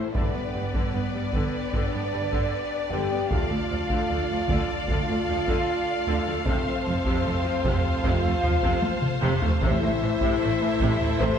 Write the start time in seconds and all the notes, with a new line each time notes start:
Already playing: C4 E4 A4 C5 E5, impact
0.13 G1 G2 D3 B3 D4 G4 B4 D5, taiko
0.35 G2 B3
0.54 G1 G2 G3
0.74 G2 D3, taiko
0.94 G1 G2 B3
1.14 G2 G3
1.33 G1 G2 D3, taiko
1.71 G1 G2 D3 B3 D4 D5, taiko
1.93 G2 B3
2.12 G1 G2 G3
2.32 G2 D3, taiko
2.91 G1 G2 D3 G4 G5
3.11 G2 B3
3.30 D2 D3 A3 F4 A4 D5 F5, taiko
3.50 D2 A3
3.70 D2 F3
3.90 D2 D3, taiko
4.09 D2 A3
4.30 D2 F3
4.48 D2 D3, taiko
4.87 D2 D3 A3 F4 F5, taiko
5.08 D2 A3
5.28 D2 F3
5.47 D2 D3, taiko
6.07 D2 D3
6.27 D2 A3
6.46 F1 F2 C3 A3 C4 F4 C5, taiko
6.66 F2 A3
6.87 F1 F2 F3
7.05 F2 C3, taiko
7.25 F1 F2 A3
7.44 F2 F3
7.64 F1 F2 C3, taiko
7.84 taiko low
8.03 F1 F2 C3 A3 F4 F5, taiko
8.23 F2 A3, taiko low
8.43 F1 F2 F3, taiko low
8.63 F2 C3, taiko
8.82 taiko high
9.02 taiko mid
9.22 F1 F2 C3, taiko mid
9.42 F2 A3, taiko low
9.62 A1 A2 C3 A3 E4 A4 E5, taiko
9.82 A2 A3
10.02 A1 A2 E3
10.21 A2 C3, taiko
10.41 A1 A2 A3
10.62 A2 E3
10.80 A1 A2 C3, taiko
11.00 taiko low
11.20 A1 A2 C3 A3 C5 C6, taiko